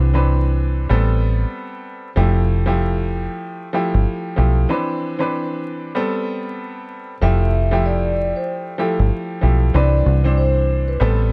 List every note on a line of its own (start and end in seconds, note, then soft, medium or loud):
0.00 0.86 C2 loud
0.00 0.10 D4 medium
0.00 0.11 B4 loud
0.14 0.85 E3 medium
0.14 0.85 C4 medium
0.14 0.85 D4 medium
0.14 0.85 B4 loud
0.89 1.44 A1 loud
0.89 2.08 G3 medium
0.89 2.08 B3 medium
0.89 2.09 C4 medium
0.89 2.09 A4 loud
2.16 3.27 F1 loud
2.16 2.62 F3 medium
2.16 2.63 A3 medium
2.16 2.63 E4 medium
2.16 2.63 G4 loud
2.66 3.67 F3 medium
2.66 3.67 A3 medium
2.66 3.67 E4 medium
2.66 3.67 G4 loud
3.73 4.33 F3 medium
3.73 4.33 A3 medium
3.73 4.33 E4 medium
3.73 4.34 G4 loud
3.94 4.04 G1 medium
4.36 4.65 B1 medium
4.36 4.66 F3 medium
4.36 4.67 A3 medium
4.36 4.67 E4 medium
4.36 4.67 G4 medium
4.69 5.15 E3 medium
4.69 5.16 C4 medium
4.69 5.16 D4 medium
4.69 5.16 B4 loud
5.19 5.90 E3 medium
5.19 5.90 C4 medium
5.19 5.90 D4 medium
5.19 5.91 B4 loud
5.95 7.14 G3 medium
5.95 7.14 B3 medium
5.95 7.14 C4 medium
5.95 7.14 A4 loud
7.21 8.32 F1 loud
7.21 7.68 F3 medium
7.21 7.68 A3 medium
7.21 7.68 E4 medium
7.21 7.69 G4 loud
7.21 7.81 E5 loud
7.71 8.72 F3 medium
7.71 8.72 A3 medium
7.71 8.72 E4 medium
7.71 8.73 G4 loud
7.86 8.33 D5 medium
8.36 8.47 C5 medium
8.78 9.38 F3 medium
8.78 9.38 A3 medium
8.78 9.39 E4 medium
8.78 9.39 G4 loud
8.78 8.97 A4 medium
8.99 9.10 G1 medium
9.41 9.70 B1 medium
9.41 9.72 F3 medium
9.41 9.72 A3 medium
9.41 9.72 E4 medium
9.41 9.72 G4 medium
9.74 10.01 C2 loud
9.74 10.20 E3 medium
9.74 10.21 C4 medium
9.74 10.21 D4 medium
9.74 10.21 B4 loud
9.74 10.34 D5 loud
10.06 10.97 C2 loud
10.24 10.95 E3 medium
10.24 10.95 C4 medium
10.24 10.96 D4 medium
10.24 10.96 C5 loud
10.38 10.85 C5 medium
10.88 10.99 B4 medium
11.00 11.32 A1 loud
11.00 11.32 G3 medium
11.00 11.32 B3 medium
11.00 11.32 C4 medium
11.00 11.32 A4 loud